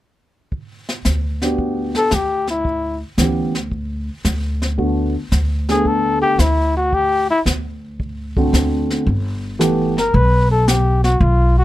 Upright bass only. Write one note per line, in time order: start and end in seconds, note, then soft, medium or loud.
1.05 1.95 D2 medium
2.12 3.01 D2 medium
3.18 4.08 D2 medium
4.25 5.15 D2 medium
5.32 6.22 D2 medium
6.39 7.28 D2 medium
7.46 8.36 D2 medium
8.53 9.03 D2 medium
9.06 10.09 G1 medium
10.14 11.17 B1 medium
11.20 11.64 B1 medium